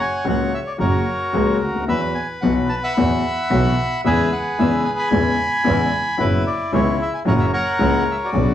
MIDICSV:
0, 0, Header, 1, 4, 480
1, 0, Start_track
1, 0, Tempo, 538600
1, 1683, Time_signature, 4, 2, 24, 8
1, 7613, End_track
2, 0, Start_track
2, 0, Title_t, "Bandoneon"
2, 0, Program_c, 0, 23
2, 0, Note_on_c, 0, 73, 89
2, 0, Note_on_c, 0, 78, 77
2, 8, Note_on_c, 0, 80, 86
2, 225, Note_off_c, 0, 80, 0
2, 246, Note_off_c, 0, 78, 0
2, 259, Note_on_c, 0, 78, 84
2, 471, Note_off_c, 0, 78, 0
2, 485, Note_on_c, 0, 76, 81
2, 537, Note_off_c, 0, 76, 0
2, 596, Note_on_c, 0, 74, 66
2, 650, Note_off_c, 0, 74, 0
2, 687, Note_off_c, 0, 73, 0
2, 709, Note_on_c, 0, 66, 59
2, 709, Note_on_c, 0, 70, 62
2, 716, Note_on_c, 0, 73, 77
2, 1405, Note_off_c, 0, 73, 0
2, 1644, Note_off_c, 0, 66, 0
2, 1644, Note_off_c, 0, 70, 0
2, 1679, Note_on_c, 0, 76, 104
2, 1687, Note_on_c, 0, 71, 80
2, 1789, Note_off_c, 0, 76, 0
2, 1914, Note_on_c, 0, 80, 84
2, 2025, Note_off_c, 0, 80, 0
2, 2149, Note_on_c, 0, 78, 80
2, 2262, Note_off_c, 0, 78, 0
2, 2399, Note_on_c, 0, 81, 94
2, 2455, Note_off_c, 0, 81, 0
2, 2527, Note_on_c, 0, 78, 80
2, 2529, Note_on_c, 0, 83, 102
2, 2533, Note_on_c, 0, 76, 75
2, 2614, Note_off_c, 0, 71, 0
2, 3574, Note_off_c, 0, 78, 0
2, 3575, Note_off_c, 0, 83, 0
2, 3577, Note_off_c, 0, 76, 0
2, 3613, Note_on_c, 0, 76, 116
2, 3622, Note_on_c, 0, 71, 78
2, 3626, Note_on_c, 0, 68, 84
2, 3854, Note_on_c, 0, 78, 88
2, 3858, Note_off_c, 0, 76, 0
2, 4074, Note_off_c, 0, 78, 0
2, 4096, Note_on_c, 0, 76, 90
2, 4314, Note_off_c, 0, 76, 0
2, 4322, Note_on_c, 0, 80, 89
2, 4377, Note_off_c, 0, 80, 0
2, 4444, Note_on_c, 0, 80, 72
2, 4447, Note_on_c, 0, 83, 103
2, 4536, Note_off_c, 0, 71, 0
2, 4538, Note_off_c, 0, 68, 0
2, 5487, Note_off_c, 0, 80, 0
2, 5522, Note_on_c, 0, 64, 80
2, 5524, Note_on_c, 0, 71, 99
2, 5557, Note_off_c, 0, 83, 0
2, 5745, Note_off_c, 0, 71, 0
2, 5765, Note_on_c, 0, 74, 75
2, 5985, Note_off_c, 0, 74, 0
2, 6012, Note_on_c, 0, 73, 83
2, 6228, Note_off_c, 0, 73, 0
2, 6257, Note_on_c, 0, 76, 93
2, 6360, Note_off_c, 0, 76, 0
2, 6364, Note_on_c, 0, 80, 71
2, 6417, Note_off_c, 0, 80, 0
2, 6441, Note_off_c, 0, 64, 0
2, 6481, Note_on_c, 0, 70, 65
2, 6482, Note_on_c, 0, 73, 67
2, 6485, Note_on_c, 0, 78, 89
2, 6597, Note_on_c, 0, 76, 80
2, 6604, Note_off_c, 0, 78, 0
2, 6651, Note_off_c, 0, 76, 0
2, 6696, Note_off_c, 0, 70, 0
2, 6700, Note_off_c, 0, 73, 0
2, 6709, Note_on_c, 0, 70, 68
2, 6713, Note_on_c, 0, 73, 77
2, 6719, Note_on_c, 0, 78, 99
2, 7162, Note_off_c, 0, 78, 0
2, 7230, Note_on_c, 0, 76, 84
2, 7276, Note_off_c, 0, 76, 0
2, 7343, Note_on_c, 0, 66, 60
2, 7356, Note_on_c, 0, 74, 85
2, 7395, Note_off_c, 0, 70, 0
2, 7396, Note_off_c, 0, 73, 0
2, 7613, Note_off_c, 0, 66, 0
2, 7613, Note_off_c, 0, 74, 0
2, 7613, End_track
3, 0, Start_track
3, 0, Title_t, "Grand piano"
3, 0, Program_c, 1, 0
3, 218, Note_on_c, 1, 49, 88
3, 221, Note_on_c, 1, 37, 95
3, 221, Note_on_c, 1, 66, 75
3, 223, Note_on_c, 1, 54, 73
3, 224, Note_on_c, 1, 58, 70
3, 430, Note_off_c, 1, 37, 0
3, 430, Note_off_c, 1, 66, 0
3, 431, Note_off_c, 1, 49, 0
3, 431, Note_off_c, 1, 54, 0
3, 432, Note_off_c, 1, 58, 0
3, 696, Note_on_c, 1, 54, 79
3, 698, Note_on_c, 1, 49, 71
3, 701, Note_on_c, 1, 66, 80
3, 702, Note_on_c, 1, 58, 61
3, 704, Note_on_c, 1, 42, 74
3, 909, Note_off_c, 1, 49, 0
3, 910, Note_off_c, 1, 66, 0
3, 911, Note_off_c, 1, 54, 0
3, 911, Note_off_c, 1, 58, 0
3, 912, Note_off_c, 1, 42, 0
3, 1184, Note_on_c, 1, 49, 92
3, 1184, Note_on_c, 1, 54, 75
3, 1188, Note_on_c, 1, 37, 88
3, 1188, Note_on_c, 1, 58, 67
3, 1192, Note_on_c, 1, 66, 87
3, 1395, Note_off_c, 1, 54, 0
3, 1396, Note_off_c, 1, 58, 0
3, 1397, Note_off_c, 1, 37, 0
3, 1397, Note_off_c, 1, 49, 0
3, 1398, Note_off_c, 1, 66, 0
3, 1503, Note_on_c, 1, 37, 46
3, 1563, Note_off_c, 1, 37, 0
3, 1564, Note_on_c, 1, 38, 59
3, 1619, Note_on_c, 1, 39, 69
3, 1624, Note_off_c, 1, 38, 0
3, 1673, Note_on_c, 1, 52, 78
3, 1677, Note_on_c, 1, 59, 62
3, 1678, Note_on_c, 1, 40, 80
3, 1678, Note_on_c, 1, 54, 57
3, 1679, Note_on_c, 1, 66, 71
3, 1681, Note_off_c, 1, 39, 0
3, 1883, Note_off_c, 1, 59, 0
3, 1884, Note_off_c, 1, 40, 0
3, 1884, Note_off_c, 1, 52, 0
3, 1884, Note_off_c, 1, 54, 0
3, 1884, Note_off_c, 1, 66, 0
3, 2161, Note_on_c, 1, 52, 75
3, 2162, Note_on_c, 1, 35, 93
3, 2162, Note_on_c, 1, 54, 74
3, 2165, Note_on_c, 1, 47, 85
3, 2167, Note_on_c, 1, 66, 81
3, 2168, Note_on_c, 1, 59, 69
3, 2366, Note_off_c, 1, 52, 0
3, 2367, Note_off_c, 1, 35, 0
3, 2367, Note_off_c, 1, 54, 0
3, 2368, Note_off_c, 1, 47, 0
3, 2369, Note_off_c, 1, 66, 0
3, 2370, Note_off_c, 1, 59, 0
3, 2646, Note_on_c, 1, 40, 88
3, 2646, Note_on_c, 1, 52, 89
3, 2646, Note_on_c, 1, 54, 65
3, 2651, Note_on_c, 1, 59, 64
3, 2651, Note_on_c, 1, 66, 82
3, 2850, Note_off_c, 1, 40, 0
3, 2850, Note_off_c, 1, 52, 0
3, 2850, Note_off_c, 1, 54, 0
3, 2852, Note_off_c, 1, 59, 0
3, 2852, Note_off_c, 1, 66, 0
3, 3118, Note_on_c, 1, 59, 69
3, 3119, Note_on_c, 1, 35, 92
3, 3119, Note_on_c, 1, 52, 76
3, 3120, Note_on_c, 1, 54, 78
3, 3122, Note_on_c, 1, 47, 89
3, 3123, Note_on_c, 1, 66, 93
3, 3326, Note_off_c, 1, 35, 0
3, 3326, Note_off_c, 1, 52, 0
3, 3326, Note_off_c, 1, 59, 0
3, 3327, Note_off_c, 1, 54, 0
3, 3328, Note_off_c, 1, 47, 0
3, 3328, Note_off_c, 1, 66, 0
3, 3603, Note_on_c, 1, 56, 61
3, 3605, Note_on_c, 1, 40, 84
3, 3605, Note_on_c, 1, 49, 69
3, 3609, Note_on_c, 1, 59, 63
3, 3612, Note_on_c, 1, 52, 78
3, 3613, Note_on_c, 1, 64, 75
3, 3808, Note_off_c, 1, 56, 0
3, 3809, Note_off_c, 1, 40, 0
3, 3809, Note_off_c, 1, 49, 0
3, 3811, Note_off_c, 1, 59, 0
3, 3812, Note_off_c, 1, 52, 0
3, 3813, Note_off_c, 1, 64, 0
3, 4087, Note_on_c, 1, 49, 75
3, 4089, Note_on_c, 1, 52, 90
3, 4089, Note_on_c, 1, 59, 74
3, 4092, Note_on_c, 1, 56, 73
3, 4094, Note_on_c, 1, 40, 81
3, 4098, Note_on_c, 1, 64, 77
3, 4288, Note_off_c, 1, 49, 0
3, 4289, Note_off_c, 1, 52, 0
3, 4289, Note_off_c, 1, 59, 0
3, 4290, Note_off_c, 1, 56, 0
3, 4292, Note_off_c, 1, 40, 0
3, 4293, Note_off_c, 1, 64, 0
3, 4548, Note_on_c, 1, 49, 68
3, 4552, Note_on_c, 1, 52, 82
3, 4553, Note_on_c, 1, 40, 83
3, 4553, Note_on_c, 1, 56, 66
3, 4554, Note_on_c, 1, 59, 64
3, 4557, Note_on_c, 1, 64, 80
3, 4758, Note_off_c, 1, 49, 0
3, 4760, Note_off_c, 1, 52, 0
3, 4761, Note_off_c, 1, 40, 0
3, 4761, Note_off_c, 1, 56, 0
3, 4761, Note_off_c, 1, 59, 0
3, 4763, Note_off_c, 1, 64, 0
3, 5023, Note_on_c, 1, 49, 82
3, 5025, Note_on_c, 1, 56, 77
3, 5028, Note_on_c, 1, 64, 88
3, 5029, Note_on_c, 1, 52, 90
3, 5030, Note_on_c, 1, 40, 94
3, 5030, Note_on_c, 1, 59, 74
3, 5236, Note_off_c, 1, 49, 0
3, 5237, Note_off_c, 1, 56, 0
3, 5238, Note_off_c, 1, 64, 0
3, 5239, Note_off_c, 1, 40, 0
3, 5239, Note_off_c, 1, 52, 0
3, 5239, Note_off_c, 1, 59, 0
3, 5501, Note_on_c, 1, 54, 81
3, 5506, Note_on_c, 1, 42, 84
3, 5507, Note_on_c, 1, 49, 65
3, 5510, Note_on_c, 1, 64, 82
3, 5511, Note_on_c, 1, 59, 64
3, 5715, Note_off_c, 1, 42, 0
3, 5715, Note_off_c, 1, 49, 0
3, 5715, Note_off_c, 1, 54, 0
3, 5717, Note_off_c, 1, 59, 0
3, 5717, Note_off_c, 1, 64, 0
3, 5992, Note_on_c, 1, 37, 94
3, 5992, Note_on_c, 1, 49, 91
3, 5994, Note_on_c, 1, 54, 74
3, 5996, Note_on_c, 1, 59, 70
3, 5998, Note_on_c, 1, 64, 81
3, 6196, Note_off_c, 1, 37, 0
3, 6197, Note_off_c, 1, 49, 0
3, 6197, Note_off_c, 1, 54, 0
3, 6198, Note_off_c, 1, 59, 0
3, 6199, Note_off_c, 1, 64, 0
3, 6459, Note_on_c, 1, 54, 89
3, 6464, Note_on_c, 1, 49, 76
3, 6465, Note_on_c, 1, 42, 96
3, 6467, Note_on_c, 1, 58, 71
3, 6468, Note_on_c, 1, 64, 74
3, 6670, Note_off_c, 1, 54, 0
3, 6672, Note_off_c, 1, 42, 0
3, 6672, Note_off_c, 1, 49, 0
3, 6673, Note_off_c, 1, 58, 0
3, 6674, Note_off_c, 1, 64, 0
3, 6940, Note_on_c, 1, 37, 101
3, 6940, Note_on_c, 1, 49, 91
3, 6944, Note_on_c, 1, 58, 73
3, 6945, Note_on_c, 1, 54, 73
3, 6945, Note_on_c, 1, 64, 86
3, 7149, Note_off_c, 1, 37, 0
3, 7150, Note_off_c, 1, 58, 0
3, 7151, Note_off_c, 1, 49, 0
3, 7151, Note_off_c, 1, 54, 0
3, 7151, Note_off_c, 1, 64, 0
3, 7421, Note_on_c, 1, 49, 79
3, 7426, Note_on_c, 1, 54, 61
3, 7427, Note_on_c, 1, 35, 83
3, 7428, Note_on_c, 1, 47, 93
3, 7429, Note_on_c, 1, 62, 79
3, 7431, Note_on_c, 1, 59, 67
3, 7613, Note_off_c, 1, 35, 0
3, 7613, Note_off_c, 1, 47, 0
3, 7613, Note_off_c, 1, 49, 0
3, 7613, Note_off_c, 1, 54, 0
3, 7613, Note_off_c, 1, 59, 0
3, 7613, Note_off_c, 1, 62, 0
3, 7613, End_track
4, 0, Start_track
4, 0, Title_t, "Double bass"
4, 0, Program_c, 2, 43
4, 225, Note_on_c, 2, 37, 88
4, 432, Note_off_c, 2, 37, 0
4, 710, Note_on_c, 2, 30, 89
4, 915, Note_off_c, 2, 30, 0
4, 1192, Note_on_c, 2, 37, 92
4, 1399, Note_off_c, 2, 37, 0
4, 1432, Note_on_c, 2, 38, 57
4, 1676, Note_off_c, 2, 38, 0
4, 1681, Note_on_c, 2, 40, 85
4, 1886, Note_off_c, 2, 40, 0
4, 2164, Note_on_c, 2, 35, 86
4, 2368, Note_off_c, 2, 35, 0
4, 2656, Note_on_c, 2, 40, 92
4, 2855, Note_off_c, 2, 40, 0
4, 3133, Note_on_c, 2, 35, 97
4, 3333, Note_off_c, 2, 35, 0
4, 3607, Note_on_c, 2, 40, 89
4, 3810, Note_off_c, 2, 40, 0
4, 4094, Note_on_c, 2, 40, 92
4, 4292, Note_off_c, 2, 40, 0
4, 4561, Note_on_c, 2, 40, 95
4, 4765, Note_off_c, 2, 40, 0
4, 5051, Note_on_c, 2, 40, 110
4, 5250, Note_off_c, 2, 40, 0
4, 5522, Note_on_c, 2, 30, 89
4, 5722, Note_off_c, 2, 30, 0
4, 5996, Note_on_c, 2, 37, 109
4, 6198, Note_off_c, 2, 37, 0
4, 6477, Note_on_c, 2, 30, 99
4, 6678, Note_off_c, 2, 30, 0
4, 6948, Note_on_c, 2, 37, 106
4, 7152, Note_off_c, 2, 37, 0
4, 7424, Note_on_c, 2, 35, 96
4, 7613, Note_off_c, 2, 35, 0
4, 7613, End_track
0, 0, End_of_file